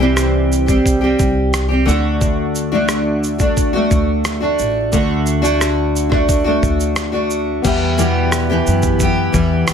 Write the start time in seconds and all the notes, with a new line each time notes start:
Already playing: C2
0.00 C3 E3 G3 C4 G4
0.17 cross-stick, shaker
0.52 shaker
0.66 G3 C4 G4, kick, shaker
0.86 kick, shaker
1.01 G3 C4 G4
1.19 C2, kick, shaker
1.54 cross-stick, shaker
1.68 G3 C4 G4
1.85 D2 D3 A3 D4 F#4, shaker
2.21 kick, shaker
2.55 shaker
2.72 D3 A3 D4 F#4
2.89 cross-stick, shaker
3.24 shaker
3.38 A3 D4 F#4, kick, shaker
3.57 kick, shaker
3.73 A3 D4 F#4
3.91 D2, kick, shaker
4.25 cross-stick, shaker
4.40 A3 D4 F#4
4.59 A1, shaker
4.92 D2 D3 A3 D4 F#4, kick, shaker
5.26 shaker
5.42 D3 A3 D4 F#4, shaker
5.61 cross-stick, shaker
5.96 shaker
6.09 A3 D4 F#4, kick, cross-stick
6.29 kick, shaker
6.44 A3 D4 F#4
6.63 D2, kick, shaker
6.80 shaker
6.96 cross-stick, shaker
7.12 A3 D4 F#4
7.30 shaker
7.62 E2 E3 G3 B3 E4 G4 B4, kick, crash, shaker
7.67 E5
7.97 E2 B2 E3 G3 B3 G4, shaker
8.32 cross-stick, shaker
8.50 E2 B2 E3 B3 G4
8.67 F#2, shaker
8.82 kick, shaker
8.99 E3 B3 G4, kick, shaker
9.32 E2 E3 G3 B3 G4, kick, shaker
9.67 E2, cross-stick, shaker